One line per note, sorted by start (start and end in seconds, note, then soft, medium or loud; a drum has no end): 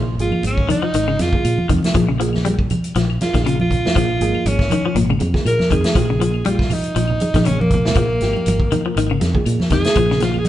0.00 0.15 A#1 medium
0.00 0.16 F3 medium
0.18 0.30 G#1 medium
0.18 0.58 F3 medium
0.18 0.58 A#3 medium
0.18 0.59 D#4 medium
0.18 0.44 F4 medium
0.18 0.58 G#4 medium
0.18 closed hi-hat soft
0.32 high conga medium
0.32 claves medium
0.43 0.65 G#1 medium
0.43 0.70 C#4 medium
0.43 closed hi-hat medium
0.43 high conga medium
0.58 kick medium
0.69 0.81 D#3 medium
0.69 1.23 D#4 medium
0.69 closed hi-hat soft
0.69 high conga medium
0.69 low conga medium
0.69 claves medium
0.82 0.93 F3 medium
0.94 1.16 G#1 medium
0.94 1.07 D#3 medium
0.94 closed hi-hat medium
1.08 1.30 C#3 medium
1.08 claves medium
1.19 1.31 F2 medium
1.19 1.25 D#4 medium
1.19 1.69 F4 medium
1.19 1.25 G#4 medium
1.19 snare soft
1.19 closed hi-hat soft
1.19 high conga loud
1.33 1.57 F3 medium
1.33 1.57 A#3 medium
1.33 1.57 D#4 medium
1.33 1.57 G#4 medium
1.33 kick medium
1.45 1.56 A#2 loud
1.45 closed hi-hat medium
1.45 claves medium
1.58 high conga medium
1.69 1.81 F2 medium
1.69 1.92 D#3 medium
1.69 kick medium
1.69 closed hi-hat medium
1.69 low conga medium
1.83 snare medium
1.83 closed hi-hat medium
1.83 high conga medium
1.95 2.80 A#1 loud
1.95 2.07 F3 medium
1.95 2.06 F3 medium
1.95 2.05 A#3 medium
1.95 2.05 D#4 medium
1.95 2.05 G#4 loud
1.95 kick medium
1.95 closed hi-hat medium
1.95 claves medium
2.09 2.19 C#3 medium
2.20 2.42 F3 medium
2.20 2.59 F3 medium
2.20 2.59 A#3 medium
2.20 2.59 D#4 medium
2.20 2.59 G#4 medium
2.20 closed hi-hat medium
2.33 snare soft
2.33 high conga medium
2.33 claves medium
2.45 2.67 G3 medium
2.45 closed hi-hat medium
2.45 high conga medium
2.59 kick medium
2.70 closed hi-hat soft
2.70 high conga medium
2.70 low conga medium
2.70 claves medium
2.84 closed hi-hat soft
2.95 3.17 A#1 loud
2.95 3.18 F3 medium
2.95 snare soft
2.95 closed hi-hat medium
3.10 claves medium
3.21 3.26 D#4 medium
3.21 3.44 F4 medium
3.21 3.26 G#4 medium
3.21 snare soft
3.21 closed hi-hat soft
3.21 high conga medium
3.34 3.86 A#1 medium
3.34 3.44 D#3 medium
3.34 3.58 F3 medium
3.34 3.58 A#3 medium
3.34 3.58 D#4 medium
3.34 3.58 G#4 medium
3.34 kick medium
3.34 snare soft
3.34 closed hi-hat soft
3.45 3.68 C#3 medium
3.45 3.58 F4 medium
3.45 closed hi-hat medium
3.45 claves medium
3.60 4.49 F4 medium
3.60 high conga medium
3.70 kick medium
3.70 closed hi-hat soft
3.70 low conga medium
3.85 snare medium
3.85 high conga medium
3.95 4.17 A#1 medium
3.95 4.06 F3 medium
3.95 4.18 F3 medium
3.95 4.06 A#3 medium
3.95 4.06 D#4 medium
3.95 4.07 G#4 medium
3.95 kick medium
3.95 closed hi-hat medium
3.95 claves medium
4.21 4.32 G#1 medium
4.21 4.60 F3 medium
4.21 4.60 A#3 medium
4.21 4.60 D#4 medium
4.21 4.60 G#4 loud
4.21 closed hi-hat medium
4.34 high conga medium
4.34 claves medium
4.45 4.67 G#1 medium
4.45 4.95 C#4 medium
4.45 closed hi-hat medium
4.45 high conga loud
4.59 kick medium
4.59 snare soft
4.70 4.84 D#3 medium
4.70 closed hi-hat soft
4.70 high conga medium
4.70 low conga medium
4.70 claves medium
4.86 4.95 F3 medium
4.95 5.17 G#1 medium
4.95 5.08 A#2 medium
4.95 closed hi-hat medium
4.95 high conga medium
5.09 5.32 C#3 medium
5.09 low conga medium
5.09 claves medium
5.20 5.33 F2 medium
5.20 5.26 D#4 medium
5.20 5.26 G#4 loud
5.20 closed hi-hat soft
5.20 high conga medium
5.34 5.58 F3 medium
5.34 5.58 A#3 medium
5.34 5.58 D#4 medium
5.34 5.58 G#4 medium
5.34 kick medium
5.34 snare soft
5.45 5.57 A#2 loud
5.45 5.71 A#4 medium
5.45 closed hi-hat medium
5.45 claves medium
5.59 snare soft
5.59 high conga medium
5.70 5.83 F2 medium
5.70 5.94 D#3 medium
5.70 6.49 G#4 medium
5.70 kick medium
5.70 closed hi-hat medium
5.70 low conga medium
5.84 snare medium
5.84 closed hi-hat soft
5.84 high conga medium
5.95 6.81 A#1 loud
5.95 6.06 F3 medium
5.95 6.08 F3 medium
5.95 6.06 A#3 medium
5.95 6.06 D#4 medium
5.95 6.06 G4 medium
5.95 kick medium
5.95 closed hi-hat medium
5.95 claves medium
6.10 6.20 C#3 medium
6.19 6.59 F3 medium
6.19 6.43 F3 medium
6.19 6.59 A#3 medium
6.19 6.59 D#4 medium
6.19 6.59 G#4 medium
6.19 closed hi-hat medium
6.34 claves medium
6.45 6.68 G3 medium
6.45 6.75 F4 medium
6.45 closed hi-hat medium
6.45 high conga loud
6.59 kick medium
6.59 snare soft
6.70 7.47 D#4 medium
6.70 open hi-hat medium
6.70 high conga medium
6.70 low conga medium
6.70 claves medium
6.84 closed hi-hat soft
6.96 7.17 A#1 loud
6.96 7.18 F3 medium
6.96 closed hi-hat medium
7.08 low conga medium
7.08 claves medium
7.20 7.26 D#4 medium
7.20 7.26 G#4 medium
7.20 closed hi-hat soft
7.20 high conga medium
7.34 7.87 A#1 medium
7.34 7.46 D#3 medium
7.34 7.58 F3 medium
7.34 7.58 A#3 medium
7.34 7.58 D#4 medium
7.34 7.58 G#4 medium
7.34 kick medium
7.34 snare soft
7.34 closed hi-hat medium
7.34 high conga medium
7.44 7.68 C#3 medium
7.44 7.62 C#4 medium
7.44 closed hi-hat medium
7.44 claves medium
7.48 high conga medium
7.60 7.71 A#3 medium
7.60 high conga loud
7.70 9.18 A#3 medium
7.70 kick medium
7.70 closed hi-hat soft
7.70 low conga medium
7.85 snare medium
7.85 low conga medium
7.95 8.17 A#1 medium
7.95 8.18 F3 medium
7.95 8.07 F3 medium
7.95 8.07 A#3 medium
7.95 8.07 D#4 medium
7.95 8.07 G#4 medium
7.95 kick medium
7.95 closed hi-hat medium
7.95 claves medium
8.20 8.33 G#1 medium
8.20 8.61 F3 medium
8.20 8.61 A#3 medium
8.20 8.61 D#4 medium
8.20 8.60 G4 medium
8.20 snare soft
8.20 closed hi-hat soft
8.33 high conga medium
8.33 claves medium
8.46 8.68 G#1 medium
8.46 closed hi-hat medium
8.46 high conga loud
8.60 kick medium
8.71 8.84 D#3 medium
8.71 closed hi-hat soft
8.71 high conga medium
8.71 low conga medium
8.71 claves medium
8.86 8.95 F3 medium
8.96 9.18 G#1 medium
8.96 9.09 D#3 medium
8.96 closed hi-hat medium
9.10 9.33 C#3 medium
9.10 claves medium
9.21 9.33 F2 medium
9.21 9.26 D#4 medium
9.21 9.26 G#4 loud
9.21 snare soft
9.21 closed hi-hat soft
9.21 high conga loud
9.35 9.58 F3 medium
9.35 9.58 A#3 medium
9.35 9.58 D#4 medium
9.35 9.58 G#4 medium
9.35 kick medium
9.46 9.58 A#2 loud
9.46 closed hi-hat medium
9.46 claves medium
9.60 snare soft
9.60 high conga medium
9.70 9.83 F2 medium
9.70 9.94 D#3 medium
9.70 10.21 G#4 loud
9.70 kick medium
9.70 snare soft
9.70 closed hi-hat soft
9.70 low conga medium
9.84 snare medium
9.84 closed hi-hat soft
9.95 10.48 A#1 medium
9.95 10.06 F3 medium
9.95 10.09 F3 medium
9.95 10.06 A#3 medium
9.95 10.06 D#4 medium
9.95 10.06 G#4 medium
9.95 kick medium
9.95 closed hi-hat medium
9.95 claves medium
10.10 10.21 C#3 medium
10.10 snare soft
10.20 10.48 F3 medium
10.20 10.44 F3 medium
10.20 10.48 A#3 medium
10.20 10.48 D#4 medium
10.20 10.40 F4 medium
10.20 10.48 G#4 medium
10.20 snare soft
10.20 closed hi-hat medium
10.34 high conga medium
10.34 claves medium
10.39 10.46 G#4 medium
10.45 closed hi-hat medium
10.45 high conga medium